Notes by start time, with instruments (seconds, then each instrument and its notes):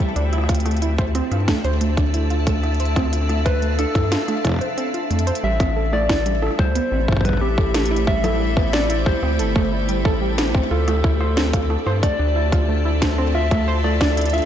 Already playing: ambient pad A3 C4 E4 G4
0.00 synth arpeggio sound G3, kick, closed hi-hat
0.16 analog synth bass D2, ambient pad D4, synth arpeggio sound D4, closed hi-hat
0.33 synth arpeggio sound E4, cross-stick, closed hi-hat
0.38 ambient pad A4, cross-stick
0.44 cross-stick
0.49 synth arpeggio sound F4, kick, closed hi-hat
0.55 closed hi-hat
0.60 closed hi-hat
0.66 synth arpeggio sound A3, ambient pad E5, cross-stick, closed hi-hat
0.71 closed hi-hat
0.77 closed hi-hat
0.82 synth arpeggio sound E4, closed hi-hat
0.98 synth arpeggio sound C5, kick, closed hi-hat
1.15 synth arpeggio sound C4, cross-stick, closed hi-hat
1.32 analog synth bass G2, synth arpeggio sound F4, cross-stick, closed hi-hat
1.48 synth arpeggio sound A3, kick, snare, closed hi-hat
1.64 analog synth bass D2, synth arpeggio sound C5, closed hi-hat
1.81 synth arpeggio sound A3, closed hi-hat
1.97 synth arpeggio sound D4, kick, closed hi-hat
2.14 synth arpeggio sound E4, closed hi-hat
2.30 synth arpeggio sound F4, closed hi-hat
2.47 synth arpeggio sound A3, kick, closed hi-hat
2.54 ambient pad F5
2.63 synth arpeggio sound E4, cross-stick, closed hi-hat
2.74 closed hi-hat
2.80 synth arpeggio sound C5, closed hi-hat
2.85 closed hi-hat
2.96 synth arpeggio sound C4, kick, cross-stick, closed hi-hat
3.13 synth arpeggio sound F4, closed hi-hat
3.29 synth arpeggio sound A3, cross-stick, closed hi-hat
3.46 soft synth lead B4, synth arpeggio sound C5, kick, closed hi-hat
3.62 synth arpeggio sound A3, closed hi-hat
3.79 synth arpeggio sound D4, soft synth lead A4, cross-stick, closed hi-hat
3.95 analog synth bass G2, synth arpeggio sound E4, kick, cross-stick, closed hi-hat
4.12 synth arpeggio sound F4, snare, closed hi-hat
4.28 synth arpeggio sound A3, cross-stick, closed hi-hat
4.45 synth arpeggio sound E4, kick, closed hi-hat
4.47 kick
4.49 kick
4.52 kick
4.54 kick
4.56 kick
4.59 synth arpeggio sound C5, kick, closed hi-hat
4.78 synth arpeggio sound C4, closed hi-hat
4.94 synth arpeggio sound F4, closed hi-hat
5.11 analog synth bass F2, synth arpeggio sound A3, closed hi-hat
5.19 closed hi-hat
5.27 synth arpeggio sound C5, closed hi-hat
5.35 closed hi-hat
5.43 analog synth bass A1, synth arpeggio sound G3, ambient pad A3, soft synth lead E5
5.60 synth arpeggio sound C4, kick, cross-stick, closed hi-hat
5.76 synth arpeggio sound A4
5.90 synth arpeggio sound A3, ambient pad E4, soft synth lead D5, cross-stick
6.09 synth arpeggio sound E4, kick, snare
6.26 synth arpeggio sound G3, closed hi-hat
6.42 synth arpeggio sound A4, cross-stick
6.47 cross-stick
6.51 ambient pad G4, cross-stick
6.55 cross-stick
6.59 analog synth bass D2, synth arpeggio sound G3, soft synth lead C5, kick, cross-stick
6.63 cross-stick
6.67 ambient pad C5, cross-stick
6.71 cross-stick
6.75 synth arpeggio sound B3, closed hi-hat
6.92 analog synth bass A1, synth arpeggio sound C4
7.08 synth arpeggio sound E4, kick
7.12 kick
7.17 kick
7.21 soft synth lead C5, kick
7.25 synth arpeggio sound G3, soft synth lead B4, kick, closed hi-hat
7.29 kick
7.33 kick
7.37 kick
7.41 synth arpeggio sound C4, soft synth lead G4
7.58 synth arpeggio sound A4, kick
7.74 synth arpeggio sound A3, snare, closed hi-hat
7.85 closed hi-hat
7.91 synth arpeggio sound E4, cross-stick
7.96 closed hi-hat
8.07 synth arpeggio sound G3, soft synth lead E5, kick
8.24 synth arpeggio sound A4, cross-stick, closed hi-hat, low conga
8.40 synth arpeggio sound G3
8.57 synth arpeggio sound B3, kick, cross-stick
8.73 synth arpeggio sound C4, soft synth lead D5, snare
8.90 synth arpeggio sound E4, closed hi-hat
9.06 synth arpeggio sound G3, soft synth lead C5, kick, cross-stick
9.23 analog synth bass D2, synth arpeggio sound C4, cross-stick
9.39 analog synth bass G1, synth arpeggio sound A4, closed hi-hat
9.56 synth arpeggio sound A3, kick, cross-stick
9.72 synth arpeggio sound E4
9.89 synth arpeggio sound G3, closed hi-hat
10.05 analog synth bass A1, synth arpeggio sound A4, kick
10.22 synth arpeggio sound G3
10.38 synth arpeggio sound B3, snare, closed hi-hat
10.55 synth arpeggio sound C4, kick
10.71 analog synth bass D2, ambient pad D4, synth arpeggio sound F4, soft synth lead A4
10.87 synth arpeggio sound A3, cross-stick, closed hi-hat
10.98 ambient pad A4
11.04 synth arpeggio sound E4, kick
11.21 synth arpeggio sound C5, cross-stick
11.37 synth arpeggio sound C4, snare
11.53 synth arpeggio sound F4, kick, closed hi-hat
11.70 synth arpeggio sound A3, ambient pad F4, cross-stick
11.87 analog synth bass G2, synth arpeggio sound C5, cross-stick
12.03 synth arpeggio sound A3, soft synth lead D5, kick, closed hi-hat
12.19 analog synth bass D2, synth arpeggio sound D4
12.26 ambient pad E5
12.36 synth arpeggio sound E4
12.52 synth arpeggio sound F4, kick, closed hi-hat
12.69 synth arpeggio sound A3
12.85 synth arpeggio sound E4
13.02 synth arpeggio sound C5, kick, snare, closed hi-hat
13.18 synth arpeggio sound C4, cross-stick
13.35 synth arpeggio sound F4, soft synth lead E5
13.51 synth arpeggio sound A3, kick, cross-stick, closed hi-hat
13.68 synth arpeggio sound C5
13.84 synth arpeggio sound A3, soft synth lead D5, cross-stick
14.01 synth arpeggio sound D4, kick, snare
14.17 synth arpeggio sound E4, closed hi-hat
14.21 closed hi-hat
14.25 closed hi-hat
14.30 soft synth lead E5, closed hi-hat
14.34 synth arpeggio sound F4, cross-stick, closed hi-hat
14.38 closed hi-hat
14.42 closed hi-hat